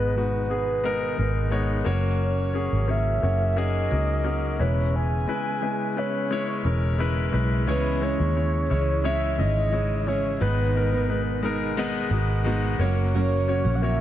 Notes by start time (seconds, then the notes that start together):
Already playing: G#1 G#2 B2 D#3 G#3 B3 D#4 B4
0.16 G#3 B3 D#4 F#4
0.49 G#3 B3 D#4 G#4 B4
0.84 G#3 B3 D#4 A#4
1.17 G#1 G#3 B3 D#4 A#4
1.50 G#3 B3 D#4 C#5
1.84 F#1 C#3 F#3 A#3 C#4 F#4 C#5
2.22 C#5
2.53 A#3 C#4 F#4 G#4
2.72 G#1
2.87 A#3 C#4 F#4 C#5 E5
3.22 F#1 A#3 C#4 F#4 C#5
3.56 A#3 C#4 F#4 G#4 D#5
3.90 C#2 A#3 C#4 F#4 A#4
4.23 A#3 C#4 F#4 A#4
4.59 E1 E3 G#3 B3 C#4 E4 B4 C#5
4.96 G#5
5.27 G#3 C#4 E4 B4
5.61 G#3 C#4 E4 B4
5.97 G#3 C#4 E4 B4 C#5
6.31 G#3 C#4 E4 C#5
6.64 E1 G#3 C#4 E4 A#4
6.98 G#3 C#4 E4 B4
7.32 B1 G#3 C#4 E4 B4
7.67 C#2 C#3 E3 G#3 C#4 E4 G#4 B4 C#5
8.01 G#3 C#4 E4 C#5
8.18 D#2 C#4 E4 G#4
8.35 G#3 C#4 E4 C#5
8.69 C#2 E3 G#3 C#4 E4 G#4 C#5
9.03 E3 G#3 C#4 E4 G#4 C#5 E5
9.38 G#1 G#3 C#4 E4 D#5
9.71 E3 G#3 C#4 E4 G#4 C#5
10.06 E3 G#3 C#4 E4 G#4 C#5
10.40 G#1 G#2 B2 D#3 G#3 B3 D#4 G#4 B4
10.75 G#3 B3 D#4 A#4
10.91 G#3 B3 D#4 G#4
11.08 G#3 B3 D#4 B4
11.42 G#3 B3 D#4 G#4 A#4
11.77 G#3 B3 D#4 G#4 B4
12.10 G#1 G#3 B3 D#4 F#4
12.44 G#3 B3 D#4 F#4
12.49 G#4
12.79 F#1 C#3 F#3 A#3 C#4 F#4 A#4 C#5
13.13 F#2 C#3 F#3 A#3 C#4 A#4 C#5
13.48 A#3 C#4 F#4 C#5
13.64 A#1 F#3 A#3 C#4 A#4
13.75 F#5
13.82 A#3 C#4 F#4 C#5 E5